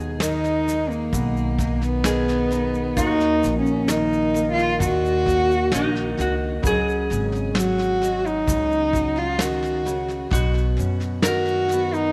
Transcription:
0.00 1.10 D#2 medium
0.00 0.20 B2 medium
0.00 0.19 D#3 medium
0.00 0.66 G#3 medium
0.00 1.59 D#4 medium
0.00 2.04 G#4 loud
0.00 shaker soft
0.20 2.04 D#3 medium
0.20 0.91 D#4 medium
0.20 snare loud
0.20 shaker loud
0.44 snare soft
0.44 shaker soft
0.67 2.97 G#3 medium
0.67 snare soft
0.67 shaker medium
0.90 1.84 A#3 medium
0.90 shaker soft
1.13 2.93 B1 loud
1.13 2.05 B2 medium
1.13 kick medium
1.13 snare soft
1.13 shaker medium
1.37 shaker soft
1.59 2.51 D#4 medium
1.59 kick medium
1.59 snare soft
1.59 shaker medium
1.81 2.99 B3 loud
1.81 snare soft
1.81 shaker soft
2.04 3.88 D#3 medium
2.04 2.96 G#4 medium
2.04 snare loud
2.04 shaker loud
2.28 snare soft
2.28 shaker soft
2.50 3.44 D#4 medium
2.50 snare soft
2.50 shaker medium
2.75 shaker soft
2.97 3.41 D#2 loud
2.97 6.64 D#2 medium
2.97 4.35 A#3 medium
2.97 3.59 D#4 loud
2.97 5.81 F#4 medium
2.97 kick medium
2.97 snare soft
2.97 shaker medium
3.20 snare soft
3.20 shaker soft
3.44 4.77 A#1 medium
3.44 snare soft
3.44 shaker medium
3.59 3.90 C#4 medium
3.66 shaker soft
3.88 5.72 D#3 medium
3.88 4.50 D#4 medium
3.88 snare medium
3.88 shaker loud
4.13 shaker soft
4.34 5.27 A#3 medium
4.34 snare soft
4.34 shaker medium
4.52 4.80 F4 loud
4.58 snare soft
4.58 shaker soft
4.80 5.69 D#2 loud
4.80 5.73 A#2 medium
4.80 6.15 F#4 loud
4.80 kick medium
4.80 snare soft
4.80 shaker loud
5.05 shaker soft
5.26 6.60 A#3 medium
5.26 kick medium
5.26 snare soft
5.26 shaker medium
5.51 shaker soft
5.72 6.15 A#1 medium
5.72 6.63 D#3 medium
5.72 6.21 D#4 medium
5.72 snare loud
5.72 shaker loud
5.95 snare soft
6.17 6.61 C#2 medium
6.17 6.65 F#4 medium
6.17 6.33 F#4 medium
6.17 snare soft
6.17 shaker medium
6.62 7.08 C#2 medium
6.62 7.55 C#3 medium
6.62 7.54 F#3 medium
6.62 8.01 G#3 medium
6.62 7.11 C#4 medium
6.62 8.93 F#4 medium
6.62 kick medium
6.62 snare soft
6.62 shaker medium
6.67 10.44 G#4 loud
6.89 shaker soft
7.10 8.44 G#1 loud
7.10 10.27 C#4 medium
7.10 snare soft
7.10 shaker medium
7.32 snare soft
7.32 shaker soft
7.54 9.38 F#3 medium
7.54 8.29 F#4 loud
7.54 snare loud
7.59 shaker loud
7.78 snare soft
7.82 shaker soft
8.02 10.31 G#3 medium
8.02 snare soft
8.02 shaker medium
8.27 9.20 D#4 loud
8.27 shaker soft
8.47 10.28 C#2 loud
8.47 9.85 C#3 medium
8.47 kick medium
8.47 snare soft
8.47 shaker loud
8.72 shaker soft
8.93 10.27 F#4 medium
8.93 kick medium
8.93 snare soft
8.93 shaker medium
9.16 9.42 F4 loud
9.16 snare soft
9.38 9.85 D#3 medium
9.38 10.33 F#4 medium
9.38 snare medium
9.38 shaker medium
9.62 snare soft
9.62 shaker soft
9.85 10.31 C#3 medium
9.85 snare soft
9.85 shaker medium
10.08 snare soft
10.08 shaker soft
10.30 10.76 B1 medium
10.30 11.24 B2 medium
10.30 11.73 B3 medium
10.30 11.27 F#4 loud
10.30 kick medium
10.30 snare soft
10.35 shaker medium
10.54 snare soft
10.54 shaker soft
10.77 12.12 F#2 medium
10.77 12.12 C#4 medium
10.77 snare soft
10.77 shaker medium
11.00 snare soft
11.00 shaker soft
11.22 12.12 D#3 medium
11.22 11.96 F#4 loud
11.22 12.12 A#4 loud
11.22 snare loud
11.22 shaker loud
11.45 snare soft
11.45 shaker soft
11.68 snare soft
11.68 shaker medium
11.73 12.12 B3 medium
11.94 12.12 D#4 loud
11.94 shaker soft

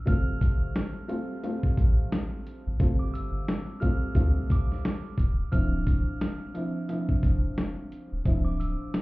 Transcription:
0.06 0.58 G1 loud
0.06 1.02 G3 loud
0.06 1.03 A3 medium
0.06 1.03 C4 medium
0.06 1.03 F4 loud
0.06 0.93 F6 loud
0.06 kick loud
0.06 closed hi-hat medium
0.41 kick loud
0.41 closed hi-hat medium
0.76 snare loud
0.76 closed hi-hat medium
1.08 1.41 G3 loud
1.08 1.41 A3 medium
1.08 1.41 C4 medium
1.08 1.41 F4 loud
1.08 closed hi-hat medium
1.43 2.71 G3 medium
1.43 2.71 A3 medium
1.43 2.72 C4 medium
1.43 2.72 F4 loud
1.43 closed hi-hat loud
1.63 1.69 A1 soft
1.63 kick medium
1.77 2.03 A1 loud
1.77 kick loud
1.77 closed hi-hat medium
2.12 snare loud
2.12 closed hi-hat medium
2.47 closed hi-hat medium
2.67 2.77 G#1 medium
2.79 3.31 G1 loud
2.79 3.76 G3 medium
2.79 3.76 A3 medium
2.79 3.76 C4 medium
2.79 3.76 F4 medium
2.79 kick loud
2.79 closed hi-hat medium
2.99 3.12 D6 medium
3.14 3.78 E6 medium
3.14 closed hi-hat medium
3.48 snare loud
3.48 closed hi-hat medium
3.80 4.13 G3 loud
3.80 4.14 A3 medium
3.80 4.14 C4 medium
3.80 4.14 F4 loud
3.80 4.45 F6 medium
3.80 kick medium
3.80 closed hi-hat medium
4.15 4.41 D2 loud
4.15 5.27 G3 medium
4.15 5.27 A3 medium
4.15 5.28 C4 medium
4.15 5.28 F4 loud
4.15 kick medium
4.15 closed hi-hat loud
4.50 5.49 D6 medium
4.50 kick loud
4.50 closed hi-hat medium
4.72 snare soft
4.85 snare loud
4.85 closed hi-hat medium
5.18 5.44 D#1 loud
5.18 kick medium
5.18 closed hi-hat medium
5.52 6.04 D1 loud
5.52 6.48 F3 medium
5.52 6.48 C4 medium
5.52 6.48 D4 medium
5.52 6.49 E4 medium
5.52 6.37 F6 loud
5.52 kick loud
5.52 closed hi-hat medium
5.87 kick medium
5.87 closed hi-hat medium
6.21 snare loud
6.21 closed hi-hat medium
6.54 6.86 F3 medium
6.54 6.87 C4 medium
6.54 6.87 D4 medium
6.54 6.87 E4 loud
6.54 closed hi-hat medium
6.89 8.17 F3 medium
6.89 8.17 C4 medium
6.89 8.17 D4 medium
6.89 8.17 E4 loud
6.89 closed hi-hat medium
7.09 7.14 F1 soft
7.09 kick medium
7.23 7.49 F1 loud
7.23 kick medium
7.23 closed hi-hat medium
7.58 snare loud
7.58 closed hi-hat medium
7.92 closed hi-hat medium
8.12 8.22 D#1 medium
8.25 8.77 D1 loud
8.25 9.02 F3 medium
8.25 9.02 C4 medium
8.25 9.02 D4 medium
8.25 9.02 E4 loud
8.25 kick loud
8.25 closed hi-hat medium
8.45 8.57 D6 medium
8.60 9.02 E6 medium
8.60 closed hi-hat medium
8.94 snare loud
8.94 closed hi-hat medium

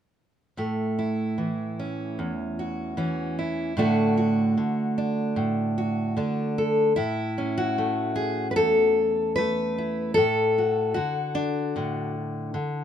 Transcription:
0.57 2.18 A2 medium
0.57 3.78 A3 soft
0.99 2.59 E4 soft
1.38 2.96 E3 soft
1.79 2.97 C#4 soft
2.19 3.77 E2 soft
2.59 3.38 F#4 soft
2.97 3.72 E3 medium
2.97 3.72 C#4 medium
3.39 3.78 E4 soft
3.77 4.56 A2 medium
3.77 4.56 D3 medium
3.77 6.92 A3 medium
3.77 4.97 D4 medium
3.77 4.16 F#4 medium
4.17 5.76 F#4 soft
4.57 6.15 D3 medium
4.98 6.16 D4 soft
5.36 6.16 A2 medium
5.78 6.57 F#4 soft
6.17 6.97 D3 medium
6.17 6.92 D4 medium
6.58 6.93 A4 medium
6.96 8.58 A2 medium
6.96 8.15 E4 medium
7.38 10.13 C#4 soft
7.58 8.98 F#4 medium
7.78 9.37 A3 soft
8.16 8.49 G#4 medium
8.51 8.56 B4 medium
8.56 10.17 E2 medium
8.56 9.35 A4 medium
9.36 10.12 A3 medium
9.36 10.14 B4 medium
9.78 10.13 E4 soft
10.14 10.97 A2 medium
10.14 11.74 A4 medium
10.58 10.93 F#4 soft
10.94 11.75 D3 medium
10.94 12.14 F#4 medium
11.35 12.84 D4 medium
11.76 12.55 A2 medium
11.76 12.53 D3 soft
12.54 12.84 D3 medium

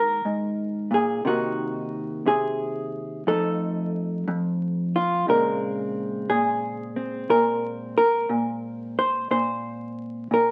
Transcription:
0.00 0.24 G#2 medium
0.00 1.25 D#3 soft
0.00 1.22 C4 soft
0.00 1.21 D#4 soft
0.00 0.92 A#4 loud
0.25 0.91 G#2 medium
0.91 1.24 A#2 medium
0.91 1.26 G#4 medium
1.25 2.25 C3 medium
1.25 3.27 D#3 soft
1.25 3.23 A#3 soft
1.25 3.24 D#4 soft
1.25 2.27 F#4 medium
2.26 3.23 C3 medium
2.26 3.27 G#4 medium
3.27 4.26 F2 medium
3.27 6.78 F3 soft
3.27 5.25 A3 soft
3.27 5.25 D#4 soft
3.27 4.95 A4 loud
4.28 5.28 F2 medium
4.96 5.29 F4 medium
5.28 6.29 A#2 medium
5.28 9.27 C#3 soft
5.28 10.51 G#3 soft
5.28 6.96 C4 soft
5.28 6.29 A#4 loud
6.30 7.29 A#2 medium
6.30 7.30 G#4 medium
6.96 10.51 C4 soft
7.29 8.28 A#2 medium
7.29 7.96 A#4 loud
7.98 8.97 A#4 loud
8.29 9.26 A#2 medium
8.99 9.30 C5 medium
9.31 10.30 A#2 medium
9.31 10.32 C5 medium
10.31 10.51 A#2 medium
10.31 10.51 A#4 medium

